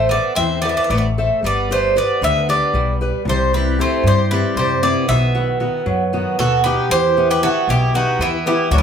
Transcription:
Already playing: upright bass A1, steel-string acoustic guitar A3 A4 C5 E5, bouzouki C5
0.09 bouzouki B3 D5, steel-string acoustic guitar A4 C5
0.13 steel-string acoustic guitar E5
0.35 upright bass E2, steel-string acoustic guitar E3, bouzouki C4 E5
0.62 bouzouki B3 D5, steel-string acoustic guitar A4 C5
0.66 bouzouki B3 D5, steel-string acoustic guitar E5
0.77 bouzouki B3 D5
0.83 bouzouki B3 D5
0.89 upright bass A1, steel-string acoustic guitar A3, bouzouki B3 D5
0.97 bouzouki B3 D5
1.18 steel-string acoustic guitar A4 C5 E5
1.43 upright bass G1, steel-string acoustic guitar G3, bouzouki B3 D5
1.71 bouzouki A3 C5, steel-string acoustic guitar G4 B4 D5
1.96 bouzouki B3 D5, steel-string acoustic guitar G4 B4 D5
2.21 upright bass D2, steel-string acoustic guitar D3, bouzouki B3 E5
2.49 bouzouki B3 D5, steel-string acoustic guitar G4 B4 D5
2.74 upright bass B1, steel-string acoustic guitar G3
3.01 steel-string acoustic guitar G4 B4 D5
3.25 upright bass C2, steel-string acoustic guitar C3
3.29 bouzouki G3 C5
3.53 bouzouki G3 B4, steel-string acoustic guitar C4 E4 G4
3.79 bouzouki A3 C5, steel-string acoustic guitar C4 E4 G4
4.03 upright bass G2, steel-string acoustic guitar G3
4.07 bouzouki G3 C5
4.31 bouzouki G3 B4, steel-string acoustic guitar C4 E4 G4
4.56 upright bass F#2, steel-string acoustic guitar C3, bouzouki G3 C5
4.83 bouzouki B3 D5, steel-string acoustic guitar C4 E4 G4
5.08 upright bass B1, steel-string acoustic guitar B2, bouzouki B3 E5
5.35 steel-string acoustic guitar D#3 B3 F#4
5.60 steel-string acoustic guitar D#3 B3 F#4
5.86 upright bass F#2, steel-string acoustic guitar F#3
6.13 steel-string acoustic guitar D#3 B3 F#4
6.38 upright bass D#2, steel-string acoustic guitar B2, bouzouki F#4 A4
6.64 steel-string acoustic guitar B3 D#4 F#4, bouzouki G4 B4
6.89 upright bass E2, steel-string acoustic guitar E3, bouzouki G4 C5
7.17 steel-string acoustic guitar B3 E4 G4
7.31 bouzouki G4 B4
7.43 steel-string acoustic guitar B3 E4 G4, bouzouki F#4 A4
7.67 upright bass B1, steel-string acoustic guitar B2, bouzouki E4 G4
7.94 steel-string acoustic guitar B3 E4 G4, bouzouki D#4 F#4
8.19 upright bass E2, steel-string acoustic guitar E3, bouzouki B3 E4
8.46 steel-string acoustic guitar B3 E4 G4, bouzouki E4 G4
8.70 upright bass D2, steel-string acoustic guitar F#3, bouzouki D4 F#4
8.78 bouzouki C#4 E4

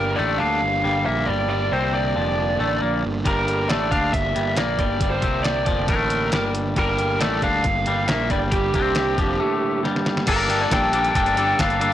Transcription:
Already playing: picked electric bass G1, clean electric guitar G2 G3, overdriven electric guitar G2 D3 G3 A#3 D4 G4, lead electric guitar A#4
0.16 picked electric bass A1, clean electric guitar A2 A3, lead electric guitar D5
0.38 picked electric bass D2, clean electric guitar D3 D4, lead electric guitar F5
0.62 picked electric bass G1, clean electric guitar G2
0.83 picked electric bass G1, clean electric guitar G2 G3
1.06 picked electric bass A#1, clean electric guitar A#2 A#3, lead electric guitar E5
1.26 picked electric bass G1, clean electric guitar G2 G3, lead electric guitar D5
1.48 overdriven electric guitar G2 D3 G3 A#3 D4 G4, lead electric guitar D5
1.72 picked electric bass C2, clean electric guitar C3 C4, lead electric guitar C5
1.95 lead electric guitar D5
2.15 picked electric bass F1, clean electric guitar F2 F3
2.59 picked electric bass A1, clean electric guitar A2 A3
2.81 picked electric bass A#1, clean electric guitar A#2 A#3
3.03 picked electric bass G1, clean electric guitar G2
3.24 picked electric bass G1, overdriven electric guitar G2 D3 G3 A#3 D4 G4, clean electric guitar G2 G3, lead electric guitar A#4, kick, closed hi-hat
3.48 closed hi-hat
3.69 picked electric bass A1, clean electric guitar A2 A3, lead electric guitar D5, snare, closed hi-hat
3.91 picked electric bass D2, clean electric guitar D3 D4, lead electric guitar F5, kick, closed hi-hat
4.13 picked electric bass G1, clean electric guitar G2, lead electric guitar E5, kick, closed hi-hat
4.35 picked electric bass G1, clean electric guitar G2 G3, closed hi-hat
4.57 picked electric bass A#1, clean electric guitar A#2 A#3, lead electric guitar D5, snare, closed hi-hat
4.78 picked electric bass G1, clean electric guitar G2 G3, lead electric guitar D5, kick, closed hi-hat
4.98 overdriven electric guitar G2 D3 G3 A#3 D4, kick, closed hi-hat
5.02 overdriven electric guitar G4
5.11 lead electric guitar C5
5.22 picked electric bass C2, clean electric guitar C3 C4, kick, closed hi-hat
5.44 lead electric guitar D5, snare, closed hi-hat
5.66 picked electric bass F1, clean electric guitar F2 F3, lead electric guitar D5, kick, closed hi-hat
5.88 picked electric bass A1, clean electric guitar A2 A3, lead electric guitar A#4, kick, closed hi-hat
6.10 closed hi-hat
6.32 picked electric bass G1, clean electric guitar G2 G3, snare, closed hi-hat
6.55 closed hi-hat
6.76 picked electric bass G1, clean electric guitar G2 G3, overdriven electric guitar G2 D3 G3 A#3 D4 G4, lead electric guitar A#4, kick, closed hi-hat
6.98 closed hi-hat
7.20 picked electric bass A1, clean electric guitar A2 A3, lead electric guitar D5, snare, closed hi-hat
7.42 picked electric bass D2, clean electric guitar D3 D4, lead electric guitar F5, kick, closed hi-hat
7.64 picked electric bass G1, clean electric guitar G2, kick, closed hi-hat
7.86 picked electric bass G1, clean electric guitar G2 G3, closed hi-hat
8.08 picked electric bass A#1, clean electric guitar A#2 A#3, lead electric guitar E5, snare, closed hi-hat
8.30 picked electric bass G1, clean electric guitar G2 G3, lead electric guitar D5, kick, closed hi-hat
8.51 overdriven electric guitar G2 D3 G3 A#3 D4, lead electric guitar G4, kick, closed hi-hat
8.55 overdriven electric guitar G4
8.74 picked electric bass C2, clean electric guitar C3 C4, kick, closed hi-hat
8.95 snare, closed hi-hat
9.18 picked electric bass F1, clean electric guitar F2 F3, kick, closed hi-hat
9.39 clean electric guitar A2 A3
9.83 clean electric guitar G2 G3, snare
9.96 snare
10.06 snare
10.17 snare
10.26 picked electric bass G1, overdriven electric guitar G2 D3 G3 A#3 D4 G4, clean electric guitar G3 A#3 D4 A4, lead electric guitar A#4, kick, closed hi-hat, crash
10.48 overdriven electric guitar G2 D3 G3 A#3 D4 G4, clean electric guitar G3 A#3 D4 A4, closed hi-hat
10.61 lead electric guitar D5
10.71 picked electric bass A#1, overdriven electric guitar G2 D3 G3 A#3 D4 G4, clean electric guitar G3 A#3 D4 A4, lead electric guitar G5, kick, snare, closed hi-hat
10.92 overdriven electric guitar G2 D3 G3 A#3 D4 G4, clean electric guitar G3 A#3 D4 A4, closed hi-hat
11.04 closed hi-hat
11.13 picked electric bass G1, overdriven electric guitar G2 D3 G3 A#3 D4 G4, clean electric guitar G3 A#3 D4 A4, lead electric guitar G5, kick, closed hi-hat
11.26 closed hi-hat
11.35 overdriven electric guitar G2 D3 G3 A#3 D4 G4, clean electric guitar G3 A#3 D4 A4, closed hi-hat
11.58 picked electric bass G1, overdriven electric guitar G2 D3 G3 A#3 D4 G4, clean electric guitar G3 A#3 D4 A4, lead electric guitar F5, kick, snare, closed hi-hat
11.70 closed hi-hat
11.79 overdriven electric guitar G2 D3 G3 A#3 D4 G4, clean electric guitar G3 A#3 D4 A4, closed hi-hat

